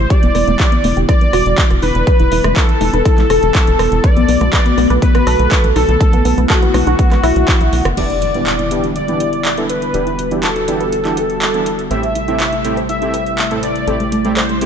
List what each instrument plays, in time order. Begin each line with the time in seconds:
Already playing: analog synth pad G3 E4, analog synth lead C5
0.10 analog synth pad D3 B3, synth arpeggio sound G4, analog synth lead D5, kick, closed hi-hat
0.23 analog synth bass E1, synth arpeggio sound B3, closed hi-hat
0.35 analog synth bass E1, synth arpeggio sound B3, cross-stick, open hi-hat
0.47 analog synth bass E1, synth arpeggio sound B3, closed hi-hat, low conga
0.60 synth arpeggio sound G4, kick, clap, closed hi-hat
0.72 synth arpeggio sound B3, closed hi-hat
0.84 analog synth bass E1, synth arpeggio sound B3, open hi-hat, low conga
0.97 analog synth bass E1, synth arpeggio sound G4, closed hi-hat
1.09 synth arpeggio sound B3, analog synth lead D5, kick, cross-stick, closed hi-hat
1.21 synth arpeggio sound B3, closed hi-hat
1.33 analog synth bass E1, synth arpeggio sound F#4, cross-stick, open hi-hat
1.46 analog synth bass E1, closed hi-hat
1.58 kick, clap, closed hi-hat
1.70 analog synth bass E1, cross-stick, closed hi-hat
1.82 analog synth bass E1, analog synth lead B4, open hi-hat, high conga
1.95 analog synth bass E1, closed hi-hat
2.07 synth arpeggio sound B4, kick, closed hi-hat
2.20 analog synth bass E1, synth arpeggio sound E4, closed hi-hat
2.32 analog synth bass E1, synth arpeggio sound E4, open hi-hat
2.44 analog synth bass E1, synth arpeggio sound E4, cross-stick, closed hi-hat, low conga
2.56 analog synth lead A4, synth arpeggio sound B4, kick, clap, closed hi-hat
2.69 synth arpeggio sound E4, closed hi-hat
2.81 analog synth bass E1, synth arpeggio sound E4, open hi-hat, high conga, low conga
2.93 analog synth bass E1, synth arpeggio sound B4, closed hi-hat, high conga
3.05 synth arpeggio sound E4, kick, cross-stick, closed hi-hat
3.18 synth arpeggio sound E4, clap, closed hi-hat, low conga
3.30 analog synth bass E1, synth arpeggio sound A4, cross-stick, open hi-hat
3.43 analog synth bass E1, closed hi-hat
3.55 kick, clap, closed hi-hat
3.67 analog synth bass E1, closed hi-hat
3.79 analog synth bass E1, cross-stick, open hi-hat
3.92 analog synth bass E1, closed hi-hat
4.04 analog synth pad D3 A3 F#4, synth arpeggio sound B4, analog synth lead D5, kick, closed hi-hat
4.17 analog synth bass B1, synth arpeggio sound B3, closed hi-hat
4.28 analog synth bass B1, synth arpeggio sound B3, open hi-hat
4.41 analog synth bass B1, synth arpeggio sound B3, cross-stick, closed hi-hat, low conga
4.53 synth arpeggio sound B4, kick, clap, closed hi-hat
4.66 synth arpeggio sound B3, closed hi-hat
4.78 analog synth bass B1, synth arpeggio sound B3, open hi-hat, low conga
4.90 analog synth bass B1, synth arpeggio sound B4, closed hi-hat
5.02 synth arpeggio sound B3, analog synth lead B4, kick, closed hi-hat
5.15 synth arpeggio sound B3, cross-stick, closed hi-hat
5.27 analog synth bass B1, synth arpeggio sound A4, cross-stick, open hi-hat
5.39 analog synth bass B1, closed hi-hat
5.51 kick, clap, closed hi-hat
5.64 analog synth bass B1, closed hi-hat
5.76 analog synth bass B1, analog synth lead A4, cross-stick, open hi-hat, high conga
5.89 analog synth bass B1, closed hi-hat
6.01 analog synth pad E4, synth arpeggio sound A4, kick, closed hi-hat
6.13 analog synth bass B1, synth arpeggio sound B3, closed hi-hat
6.25 analog synth bass B1, synth arpeggio sound B3, open hi-hat
6.38 analog synth bass B1, synth arpeggio sound B3, closed hi-hat, low conga
6.50 analog synth lead F#4, synth arpeggio sound A4, kick, cross-stick, clap, closed hi-hat
6.62 synth arpeggio sound B3, closed hi-hat
6.74 analog synth bass B1, synth arpeggio sound B3, cross-stick, open hi-hat, high conga, low conga
6.87 analog synth bass B1, synth arpeggio sound F#4, closed hi-hat, high conga
6.99 synth arpeggio sound B3, kick, closed hi-hat
7.12 synth arpeggio sound B3, cross-stick, clap, closed hi-hat, low conga
7.23 analog synth bass B1, synth arpeggio sound E4, cross-stick, open hi-hat
7.36 analog synth bass B1, closed hi-hat
7.48 kick, clap, closed hi-hat
7.61 analog synth bass B1, closed hi-hat
7.73 analog synth bass B1, open hi-hat
7.85 analog synth bass F#1, cross-stick, closed hi-hat
7.97 analog synth bass E1, analog synth pad D3 G3 B3 E4, supersaw synth E3 B3 D4 E4 G4, synth arpeggio sound G4, analog synth lead D5, closed hi-hat, crash, impact
8.10 synth arpeggio sound B3, closed hi-hat
8.22 synth arpeggio sound B3, closed hi-hat
8.34 supersaw synth E3 B3 D4 E4 G4, synth arpeggio sound B3, closed hi-hat
8.46 synth arpeggio sound G4, clap, closed hi-hat
8.59 synth arpeggio sound B3, closed hi-hat
8.71 supersaw synth E3 B3 D4 E4 G4, synth arpeggio sound B3, closed hi-hat
8.84 synth arpeggio sound G4, closed hi-hat
8.96 synth arpeggio sound B3, analog synth lead D5, closed hi-hat
9.08 supersaw synth E3 B3 D4 E4 G4, synth arpeggio sound B3, closed hi-hat
9.20 synth arpeggio sound F#4, closed hi-hat
9.33 closed hi-hat
9.45 clap, closed hi-hat
9.57 supersaw synth E3 B3 D4 E4 A4, closed hi-hat
9.69 analog synth lead B4, closed hi-hat
9.82 closed hi-hat
9.94 analog synth bass E1, supersaw synth E3 B3 D4 E4 G4, analog synth pad F#4, synth arpeggio sound B4, closed hi-hat
10.07 synth arpeggio sound E4, closed hi-hat
10.19 synth arpeggio sound E4, closed hi-hat
10.31 supersaw synth E3 B3 D4 E4 G4, synth arpeggio sound E4, closed hi-hat
10.43 analog synth lead A4, synth arpeggio sound B4, clap, closed hi-hat
10.56 synth arpeggio sound E4, closed hi-hat
10.68 supersaw synth E3 B3 D4 E4 G4, synth arpeggio sound E4, closed hi-hat
10.80 synth arpeggio sound B4, closed hi-hat
10.92 synth arpeggio sound E4, closed hi-hat
11.05 supersaw synth E3 B3 D4 E4 G4, synth arpeggio sound E4, clap, closed hi-hat
11.17 synth arpeggio sound A4, closed hi-hat
11.30 closed hi-hat
11.42 clap, closed hi-hat
11.54 supersaw synth E3 B3 D4 E4 A4, closed hi-hat
11.66 closed hi-hat
11.79 closed hi-hat
11.91 analog synth bass A1, supersaw synth A2 A3 C4 E4 G4, analog synth pad C3 A3 E4, synth arpeggio sound C5, analog synth lead E5, closed hi-hat
12.03 synth arpeggio sound E4, closed hi-hat
12.15 synth arpeggio sound E4, closed hi-hat
12.28 supersaw synth A2 A3 C4 E4 G4, synth arpeggio sound E4, closed hi-hat
12.40 synth arpeggio sound C5, clap, closed hi-hat
12.53 synth arpeggio sound E4, closed hi-hat
12.65 supersaw synth A2 A3 C4 E4 G4, synth arpeggio sound E4, closed hi-hat
12.77 synth arpeggio sound C5, closed hi-hat
12.89 synth arpeggio sound E4, analog synth lead E5, closed hi-hat
13.02 supersaw synth A2 A3 C4 E4 G4, synth arpeggio sound E4, closed hi-hat
13.14 synth arpeggio sound B4, closed hi-hat
13.26 closed hi-hat
13.38 clap, closed hi-hat
13.51 supersaw synth A2 A3 C4 E4 A4, closed hi-hat
13.63 analog synth lead D5, closed hi-hat
13.76 closed hi-hat
13.87 analog synth bass A1, supersaw synth A2 A3 C4 E4 G4, synth arpeggio sound A4, closed hi-hat
14.00 synth arpeggio sound A3, closed hi-hat
14.12 synth arpeggio sound A3, closed hi-hat
14.25 supersaw synth A2 A3 C4 E4 G4, synth arpeggio sound A3, closed hi-hat
14.37 synth arpeggio sound A4, analog synth lead C5, clap, closed hi-hat
14.49 synth arpeggio sound A3, closed hi-hat
14.61 supersaw synth A2 A3 C4 E4 G4, synth arpeggio sound A3, closed hi-hat